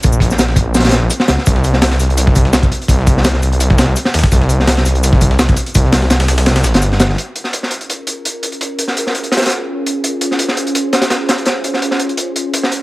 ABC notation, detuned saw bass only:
X:1
M:4/4
L:1/16
Q:"Swing 16ths" 1/4=168
K:Bbm
V:1 name="Detuned saw bass" clef=bass
B,,,6 B,,,4- B,,, B,,, z2 D,, z | C,,6 C,,8 z2 | C,,6 C,,4- C,, C,, z2 E,, z | C,,6 C,,8 z2 |
C,,6 C,,4 B,,, =G,,,4- G,,, | z16 | z16 | z16 |
z16 |]